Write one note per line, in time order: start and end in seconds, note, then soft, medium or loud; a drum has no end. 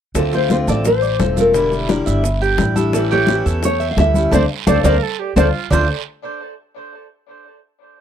0.15 0.63 D2 medium
0.15 0.49 D3 medium
0.15 0.50 A3 medium
0.15 0.50 C4 medium
0.15 0.50 F4 medium
0.15 0.32 A4 loud
0.15 high bongo medium
0.15 high conga soft
0.15 long guiro medium
0.15 maracas medium
0.33 0.66 F4 medium
0.33 0.50 C5 medium
0.33 high conga soft
0.33 maracas soft
0.50 0.84 D3 medium
0.50 0.84 A3 medium
0.50 0.85 C4 medium
0.50 0.85 F4 medium
0.50 0.56 C5 medium
0.50 high bongo medium
0.50 high conga medium
0.50 short guiro medium
0.50 maracas soft
0.67 1.16 A1 medium
0.67 1.02 A4 medium
0.67 0.85 D5 loud
0.67 high conga soft
0.67 short guiro medium
0.67 maracas medium
0.85 1.40 C5 medium
0.85 muted steel-string acoustic guitar stroke medium
0.85 high bongo medium
0.85 high conga soft
0.85 long guiro medium
0.85 maracas medium
1.02 1.19 D5 medium
1.02 high conga soft
1.02 maracas soft
1.19 2.01 E1 loud
1.19 1.36 D3 soft
1.19 1.37 A3 soft
1.19 1.36 C4 soft
1.19 1.35 F4 medium
1.19 1.53 A4 medium
1.19 high bongo medium
1.19 low bongo medium
1.19 high conga medium
1.19 short guiro medium
1.19 maracas soft
1.36 1.54 A3 medium
1.36 1.54 C4 medium
1.36 1.53 F4 medium
1.36 1.71 A#4 medium
1.36 high conga medium
1.36 short guiro medium
1.36 maracas medium
1.53 1.88 D3 medium
1.53 1.89 G3 medium
1.53 1.89 D4 medium
1.53 1.88 E4 medium
1.53 1.89 E4 medium
1.53 high bongo medium
1.53 high conga soft
1.53 long guiro medium
1.53 maracas medium
1.72 high bongo soft
1.72 high conga soft
1.72 maracas soft
1.89 2.23 D3 medium
1.89 2.23 G3 medium
1.89 2.24 D4 medium
1.89 2.24 E4 medium
1.89 2.06 A#4 medium
1.89 high bongo medium
1.89 high conga medium
1.89 short guiro medium
1.89 maracas soft
2.06 2.55 G1 loud
2.06 2.40 E5 medium
2.06 high bongo soft
2.06 high conga soft
2.06 short guiro medium
2.06 maracas medium
2.23 muted steel-string acoustic guitar stroke medium
2.23 high bongo medium
2.23 high conga soft
2.23 long guiro medium
2.23 maracas medium
2.41 2.75 G4 medium
2.41 high bongo soft
2.41 high conga soft
2.41 maracas soft
2.58 3.40 A1 loud
2.58 2.75 D3 soft
2.58 2.76 G3 medium
2.58 2.76 D4 soft
2.58 2.74 E4 medium
2.58 high bongo medium
2.58 low bongo medium
2.58 high conga medium
2.58 short guiro medium
2.58 maracas soft
2.76 2.93 G3 medium
2.76 2.93 D4 medium
2.76 2.93 E4 medium
2.76 3.10 A4 medium
2.76 high conga medium
2.76 short guiro medium
2.76 maracas medium
2.92 3.27 E3 medium
2.92 3.28 G3 medium
2.92 3.28 C#4 medium
2.92 3.29 E4 medium
2.92 3.12 A4 medium
2.92 high bongo medium
2.92 high conga soft
2.92 long guiro medium
2.92 maracas medium
3.10 3.45 G4 medium
3.10 3.64 C#5 medium
3.10 high conga soft
3.10 maracas soft
3.27 3.62 E3 medium
3.27 3.62 G3 medium
3.27 3.63 C#4 medium
3.27 3.63 E4 medium
3.27 high bongo medium
3.27 high conga medium
3.27 short guiro medium
3.27 maracas soft
3.45 3.94 E2 medium
3.45 3.80 A4 medium
3.45 high conga soft
3.45 short guiro medium
3.45 maracas medium
3.62 3.91 C#5 loud
3.62 muted steel-string acoustic guitar stroke medium
3.62 high bongo medium
3.62 high conga soft
3.62 long guiro medium
3.62 maracas medium
3.80 3.97 E5 medium
3.80 high conga soft
3.80 maracas soft
3.91 3.98 F5 medium
3.97 4.30 D2 loud
3.97 4.14 E3 soft
3.97 4.15 G3 soft
3.97 4.15 C#4 medium
3.97 4.14 E4 soft
3.97 4.31 A4 medium
3.97 4.31 E5 loud
3.97 high bongo medium
3.97 low bongo medium
3.97 high conga medium
3.97 short guiro medium
3.97 maracas soft
4.14 4.33 G3 medium
4.14 4.32 C#4 medium
4.14 4.32 E4 medium
4.14 high conga medium
4.14 short guiro medium
4.14 maracas medium
4.31 4.45 D2 medium
4.31 4.44 A3 loud
4.31 4.44 C4 loud
4.31 4.44 D4 medium
4.31 4.43 A4 medium
4.31 4.43 C5 medium
4.31 4.45 C5 loud
4.31 4.43 D5 medium
4.31 4.45 D5 loud
4.31 4.45 F5 loud
4.31 low bongo medium
4.31 high conga loud
4.31 long guiro loud
4.31 maracas medium
4.67 4.80 D2 loud
4.67 4.79 A3 loud
4.67 4.79 C4 medium
4.67 4.79 D4 medium
4.67 4.78 A4 medium
4.67 4.86 A4 loud
4.67 4.78 C5 medium
4.67 4.79 C5 medium
4.67 4.78 D5 medium
4.67 4.79 D5 medium
4.67 4.78 F5 loud
4.67 low bongo loud
4.67 high conga medium
4.67 maracas medium
4.84 4.97 D2 loud
4.84 4.96 A3 medium
4.84 4.96 C4 medium
4.84 4.96 D4 medium
4.84 4.96 A4 medium
4.84 5.04 A#4 loud
4.84 4.96 C5 medium
4.84 4.96 D5 medium
4.84 4.96 D5 loud
4.84 4.96 F5 loud
4.84 low bongo loud
4.84 high conga loud
4.84 long guiro loud
4.84 maracas loud
5.03 5.21 A4 loud
5.19 5.37 G4 medium
5.36 5.49 D2 loud
5.36 5.48 A3 loud
5.36 5.48 C4 medium
5.36 5.48 D4 medium
5.36 5.69 F4 medium
5.36 5.48 A4 loud
5.36 5.48 C5 loud
5.36 5.48 D5 loud
5.36 5.48 D5 medium
5.36 5.48 F5 loud
5.36 low bongo loud
5.36 high conga loud
5.36 long guiro medium
5.36 maracas medium
5.70 5.87 D2 loud
5.70 5.85 D3 medium
5.70 5.85 A3 medium
5.70 5.85 C4 medium
5.70 5.87 D4 medium
5.70 5.86 F4 medium
5.70 5.88 F4 medium
5.70 5.88 A4 medium
5.70 5.88 C5 loud
5.70 low bongo loud
5.70 low conga loud
5.70 long guiro medium
5.70 maracas medium